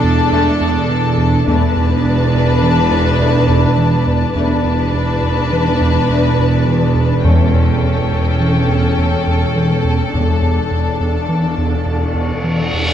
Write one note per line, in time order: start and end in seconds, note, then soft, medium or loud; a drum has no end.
0.00 1.44 E1 medium
0.00 1.44 E2 medium
0.00 0.21 E2 loud
0.00 1.45 D4 medium
0.00 1.44 A4 medium
0.00 1.45 A4 medium
0.00 1.47 D5 medium
0.00 1.44 A5 medium
0.00 1.47 A5 medium
0.32 0.50 E2 medium
0.32 0.52 A3 medium
0.32 0.52 D4 medium
0.61 0.78 E2 medium
0.89 1.07 E3 medium
1.17 1.35 E2 medium
1.46 4.33 E1 loud
1.46 4.32 E2 medium
1.46 1.65 E2 medium
1.46 2.30 E2 medium
1.46 1.67 A3 medium
1.46 4.32 D4 medium
1.46 1.67 D4 medium
1.46 4.33 B4 medium
1.46 4.32 D5 medium
1.46 4.32 A5 medium
1.46 4.33 A5 medium
1.76 1.94 E2 medium
2.05 2.22 E2 medium
2.34 2.51 E2 medium
2.63 2.80 E3 medium
2.91 3.09 E2 loud
3.20 3.37 E2 medium
3.20 3.41 A3 medium
3.20 3.41 D4 medium
3.48 3.66 E2 medium
3.78 3.96 E3 medium
4.07 4.25 E2 medium
4.33 10.09 E1 medium
4.33 4.53 E2 medium
4.33 10.09 E2 medium
4.33 4.55 A3 medium
4.33 4.55 D4 medium
4.33 7.21 D4 medium
4.33 7.20 B4 medium
4.33 7.19 D5 medium
4.33 7.20 A5 medium
4.65 4.82 E2 medium
4.94 5.11 E2 medium
5.23 5.40 E2 medium
5.52 5.69 E3 medium
5.81 5.98 E2 medium
6.09 6.27 E2 medium
6.09 6.29 A3 medium
6.09 6.29 D4 medium
6.39 6.56 E2 medium
6.67 6.84 E3 medium
6.95 7.13 E2 medium
7.23 7.42 E2 medium
7.23 8.07 E2 medium
7.23 7.46 A3 medium
7.23 10.09 C#4 medium
7.23 7.45 C#4 medium
7.23 12.94 A4 medium
7.23 12.78 A4 medium
7.23 10.13 C#5 medium
7.23 10.09 G5 medium
7.23 10.13 G5 medium
7.54 7.71 E2 medium
7.83 8.00 E2 medium
8.11 8.29 E2 medium
8.40 8.58 E3 medium
8.68 8.86 E2 loud
8.98 9.15 E2 medium
8.98 9.18 A3 medium
8.98 9.18 C#4 soft
9.27 9.44 E2 medium
9.56 9.73 E3 medium
9.84 10.02 E2 medium
10.13 12.78 E1 medium
10.13 12.78 E2 medium
10.13 10.31 E2 medium
10.13 10.96 E2 medium
10.13 10.33 A3 soft
10.13 12.78 D4 medium
10.13 10.33 D4 soft
10.13 12.94 D5 medium
10.13 12.78 A5 soft
10.13 12.94 A5 medium
10.13 reverse cymbal soft
10.42 10.60 E2 medium
10.71 10.89 E2 medium
11.01 11.18 E2 medium
11.29 11.46 E3 medium
11.58 11.75 E2 loud
11.86 12.03 E2 medium
11.86 12.07 A3 soft
11.86 12.07 D4 soft
12.15 12.32 E2 medium
12.44 12.61 E3 medium
12.73 12.91 E2 medium